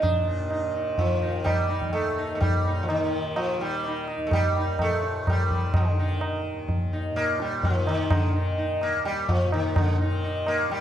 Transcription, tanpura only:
0.00 1.81 D#2 medium
0.00 2.39 A#2 medium
0.00 0.62 D#3 medium
0.62 1.22 D#3 medium
1.22 2.99 D#3 medium
1.81 4.17 D#2 medium
2.40 4.76 A#2 medium
2.99 3.58 D#3 medium
3.58 5.35 D#3 medium
4.17 6.53 D#2 medium
4.77 7.11 A#2 medium
5.35 5.94 D#3 medium
5.94 7.70 D#3 medium
6.53 8.87 D#2 medium
7.11 9.45 A#2 medium
7.70 8.27 D#3 medium
8.27 10.03 D#3 medium
8.88 10.80 D#2 medium
9.45 10.80 A#2 medium
10.03 10.62 D#3 medium
10.62 10.80 D#3 medium

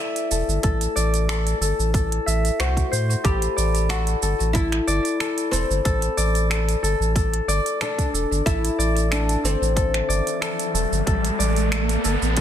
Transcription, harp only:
0.00 0.31 A4 medium
0.00 0.95 D5 loud
0.00 1.71 E5 medium
0.31 0.63 A4 medium
0.63 1.28 A4 medium
0.96 2.80 D5 loud
1.29 1.61 A4 medium
1.61 1.93 A4 medium
1.94 3.23 A4 medium
2.26 3.99 E5 medium
2.59 2.91 C5 medium
2.91 4.89 C5 medium
3.24 3.89 A4 medium
3.56 4.87 D5 medium
3.89 4.22 A4 medium
4.22 4.54 A4 medium
4.55 5.19 A4 medium
4.87 6.17 D5 loud
5.20 5.51 A4 medium
5.52 5.84 A4 medium
5.85 6.50 A4 loud
6.17 7.48 D5 loud
6.50 6.82 A4 medium
6.83 7.15 A4 medium
7.16 7.81 A4 medium
7.48 8.78 D5 loud
7.81 8.13 A4 medium
8.13 8.45 A4 medium
8.46 9.10 A4 medium
8.79 10.08 D5 loud
9.11 9.43 A4 medium
9.43 9.76 A4 medium
9.76 10.41 A4 medium
10.09 11.38 D5 loud
10.41 10.74 A4 medium
10.74 11.06 A4 medium
11.06 11.71 A4 medium
11.39 12.41 D5 medium
11.71 12.04 A4 medium
12.05 12.37 A4 medium
12.37 12.41 A4 medium

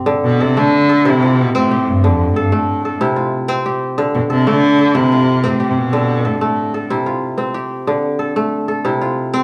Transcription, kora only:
0.00 0.13 C3 medium
0.00 0.56 A3 medium
0.00 1.38 C4 medium
0.00 0.99 G4 medium
0.06 1.10 D3 medium
0.40 0.89 A4 medium
0.57 2.52 A3 medium
0.89 2.21 A4 medium
1.05 2.08 C3 medium
1.05 2.62 E4 medium
1.22 2.74 F4 medium
1.55 3.35 C4 medium
1.71 3.12 G4 medium
2.04 3.05 D3 medium
2.36 2.85 A4 medium
2.52 4.46 A3 medium
2.85 4.17 A4 medium
3.01 4.03 C3 medium
3.01 4.57 E4 medium
3.16 4.68 F4 medium
3.49 5.29 C4 medium
3.66 5.07 G4 medium
3.98 5.00 D3 medium
4.30 4.78 A4 medium
4.47 6.41 A3 medium
4.79 6.10 A4 medium
4.95 5.97 C3 medium
4.95 6.51 E4 medium
5.12 6.63 F4 medium
5.44 7.24 C4 medium
5.60 7.01 G4 medium
5.93 6.95 D3 medium
6.25 6.74 A4 medium
6.41 8.36 A3 medium
6.74 8.06 A4 medium
6.90 7.92 C3 medium
6.90 8.47 E4 medium
7.06 8.58 F4 medium
7.38 9.18 C4 medium
7.54 8.96 G4 medium
7.87 8.90 D3 medium
8.19 8.68 A4 medium
8.36 9.43 A3 medium
8.68 9.43 A4 medium
8.85 9.43 C3 medium
8.85 9.43 E4 medium
9.01 9.43 F4 medium
9.34 9.43 C4 medium

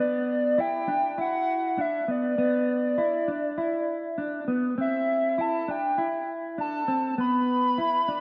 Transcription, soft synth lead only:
0.00 0.62 D5 medium
0.60 1.19 G5 loud
1.21 1.82 F#5 loud
1.81 2.12 E5 medium
2.11 4.49 D5 medium
4.81 5.42 E5 medium
5.41 5.72 A5 loud
5.71 6.29 G5 medium
6.60 7.15 A5 medium
7.20 8.21 B5 loud

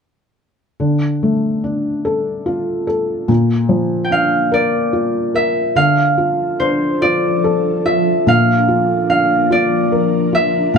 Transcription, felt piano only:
0.80 3.25 D3 medium
1.23 2.84 A3 soft
1.64 3.25 D4 soft
2.05 2.86 A4 medium
2.46 3.26 F4 soft
2.87 3.27 A4 soft
3.28 5.72 A#2 medium
3.69 5.30 F3 soft
4.11 5.72 D4 soft
4.52 5.33 A#4 medium
4.93 5.74 F4 medium
5.35 5.75 A#4 soft
5.76 8.23 D3 medium
6.18 7.01 F4 soft
6.60 8.23 D4 soft
7.02 7.84 F4 medium
7.44 8.25 A4 medium
7.86 8.26 F4 medium
8.27 10.70 A#2 medium
8.68 9.49 F4 soft
9.09 10.70 D4 medium
9.51 10.31 F4 medium
9.92 10.72 A#4 soft
10.33 10.73 F4 medium
10.74 10.78 A#2 medium

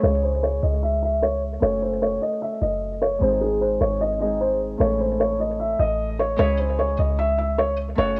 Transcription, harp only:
0.01 1.67 G#3 medium
0.01 1.61 C#4 medium
0.01 2.65 E4 medium
0.06 1.66 G#4 medium
1.60 3.24 A3 medium
1.60 3.26 C#4 medium
1.60 4.07 F#4 medium
1.65 3.24 A4 medium
3.18 4.18 G#3 medium
3.18 4.20 C4 medium
3.18 4.21 D#4 medium
3.24 4.22 G#4 medium
4.19 4.85 G#3 medium
4.19 4.85 C4 soft
4.19 4.87 D#4 soft
4.19 4.84 G#4 medium
4.78 6.42 A3 medium
4.78 6.38 C#4 medium
4.78 6.40 E4 medium
4.83 6.42 A4 medium
6.36 8.03 G#3 medium
6.36 7.97 C#4 medium
6.36 8.20 E4 medium
6.42 8.01 G#4 medium
7.95 8.20 A3 medium
7.95 8.20 C#4 medium
7.95 8.20 F#4 medium
8.01 8.20 A4 medium

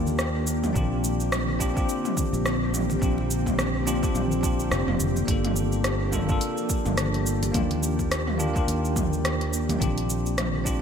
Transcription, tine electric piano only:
0.00 0.77 A#3 medium
0.00 0.74 D4 medium
0.00 0.76 F4 medium
0.00 0.78 G4 loud
0.73 1.56 C4 medium
0.73 1.57 D4 medium
0.73 1.58 F4 medium
0.78 1.59 G4 medium
1.59 1.72 C4 medium
1.59 1.72 D4 medium
1.59 1.73 F4 medium
1.59 1.73 G4 medium
1.74 2.98 C4 medium
1.74 2.98 D4 medium
1.74 2.99 F4 medium
1.79 3.00 G4 medium
2.99 3.83 C4 medium
2.99 3.84 D4 medium
2.99 3.84 F4 medium
3.04 3.85 G4 medium
3.86 3.97 C4 medium
3.86 3.98 D4 medium
3.86 3.98 F4 medium
3.86 3.98 G4 medium
4.02 4.40 C4 medium
4.02 4.41 D4 medium
4.02 4.41 F4 medium
4.02 4.42 G4 medium
4.41 5.24 C4 medium
4.41 5.25 D4 medium
4.41 5.26 F4 medium
4.46 5.27 G4 medium
5.26 6.09 A#3 medium
5.26 6.10 D4 medium
5.26 6.11 F4 medium
5.31 6.12 A4 medium
6.12 6.25 A#3 medium
6.12 6.25 D4 medium
6.12 6.26 F4 medium
6.12 6.26 A4 medium
6.27 7.51 A#3 medium
6.27 7.51 D4 medium
6.27 7.52 F4 medium
6.32 7.53 A4 medium
7.52 8.35 A#3 medium
7.52 8.36 D4 medium
7.52 8.37 F4 medium
7.57 8.38 G4 medium
8.38 8.50 A#3 medium
8.38 8.50 D4 medium
8.38 8.50 F4 medium
8.38 8.51 G4 loud
8.53 9.77 A#3 medium
8.53 9.78 D4 medium
8.53 9.79 F4 medium
8.58 9.79 G4 medium
9.79 10.62 C4 medium
9.79 10.63 D4 medium
9.79 10.64 F4 medium
9.84 10.64 G4 medium
10.64 10.77 C4 medium
10.64 10.78 D4 medium
10.64 10.78 F4 medium
10.64 10.79 G4 medium

